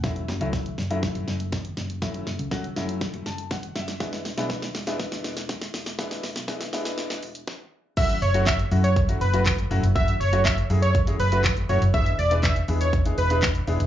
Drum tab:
CC |----------------|----------------|----------------|----------------|
HH |-x-x-x-x-x-x-x-x|-x-x-x-x-x-x-x-x|-xox-xox-xox-xox|-xox-xox-xox----|
SH |----------------|----------------|----------------|xxxxxxxxxxxx----|
CP |----------------|----------------|----------------|----------------|
SD |o-o-o-o-o-o-o-o-|o-o-o-o-o-o-o-oo|oooooooooooooooo|oooooooooo--o---|
BD |o---o---o---o---|o---o---o---o---|o---o---o---o---|o---o-------o---|

CC |x---------------|----------------|----------------|
HH |-xox-xox-xox-xox|-xox-xox-xox-xox|-xox-xox-xox-xox|
SH |xxxxxxxxxxxxxxxx|xxxxxxxxxxxxxxxx|xxxxxxxxxxxxxxxx|
CP |----x-------x---|----x-------x---|----x-------x---|
SD |----o-------o---|----o-------o---|----o-------o---|
BD |o---o---o---o---|o---o---o---o---|o---o---o---o---|